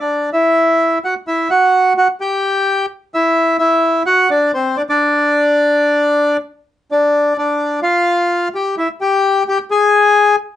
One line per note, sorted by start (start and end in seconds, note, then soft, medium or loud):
0.00 0.30 D4 medium
0.00 0.30 D5 medium
0.33 0.99 E4 medium
0.33 0.98 E5 medium
1.04 1.15 F#4 medium
1.04 1.14 F#5 medium
1.27 1.48 E4 medium
1.27 1.50 E5 medium
1.50 1.93 F#4 medium
1.50 1.93 F#5 medium
1.97 2.07 F#4 medium
1.97 2.08 F#5 medium
2.21 2.86 G4 medium
2.21 2.86 G5 medium
3.14 3.57 E4 medium
3.14 3.57 E5 medium
3.59 4.03 E4 medium
3.59 4.02 E5 medium
4.06 4.28 F#4 medium
4.06 4.30 F#5 loud
4.30 4.52 D4 medium
4.30 4.52 D5 medium
4.54 4.76 C4 medium
4.54 4.77 C5 medium
4.77 4.82 D4 medium
4.77 4.82 D5 medium
4.89 6.37 D4 medium
4.89 6.37 D5 medium
6.92 7.33 D4 medium
6.92 7.37 D5 medium
7.38 7.80 D4 medium
7.38 7.80 D5 medium
7.82 8.48 F4 medium
7.82 8.49 F5 medium
8.55 8.75 G4 medium
8.55 8.76 G5 medium
8.77 8.87 E4 medium
8.77 8.89 E5 medium
9.01 9.43 G4 medium
9.01 9.44 G5 medium
9.48 9.58 G4 medium
9.48 9.59 G5 loud
9.71 10.36 G#4 medium
9.71 10.36 G#5 loud